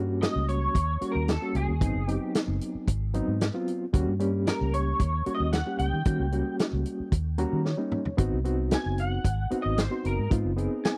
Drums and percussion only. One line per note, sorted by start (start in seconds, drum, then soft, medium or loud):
0.22 snare loud
0.22 closed hi-hat medium
0.49 closed hi-hat medium
0.75 kick medium
0.75 closed hi-hat medium
1.01 closed hi-hat medium
1.28 snare loud
1.28 closed hi-hat medium
1.55 closed hi-hat medium
1.81 kick loud
1.81 closed hi-hat medium
2.08 closed hi-hat medium
2.35 snare loud
2.35 closed hi-hat medium
2.61 closed hi-hat medium
2.88 kick medium
2.88 closed hi-hat medium
3.14 closed hi-hat medium
3.41 snare loud
3.41 closed hi-hat medium
3.68 closed hi-hat medium
3.94 kick loud
3.94 closed hi-hat medium
4.20 closed hi-hat medium
4.47 snare loud
4.47 closed hi-hat medium
4.74 closed hi-hat medium
5.00 kick medium
5.00 closed hi-hat medium
5.26 closed hi-hat medium
5.53 snare medium
5.53 closed hi-hat medium
5.79 closed hi-hat medium
6.05 kick loud
6.05 closed hi-hat medium
6.32 closed hi-hat soft
6.59 snare loud
6.59 closed hi-hat medium
6.86 closed hi-hat medium
7.12 kick medium
7.12 closed hi-hat medium
7.38 closed hi-hat medium
7.66 snare medium
7.92 mid tom medium
8.05 floor tom medium
8.18 kick loud
8.18 closed hi-hat medium
8.45 closed hi-hat medium
8.71 snare loud
8.71 closed hi-hat medium
8.98 closed hi-hat medium
9.25 kick medium
9.25 closed hi-hat medium
9.51 closed hi-hat medium
9.78 snare loud
9.78 closed hi-hat medium
10.05 closed hi-hat medium
10.31 kick loud
10.31 closed hi-hat medium
10.58 closed hi-hat medium
10.85 snare loud
10.85 closed hi-hat medium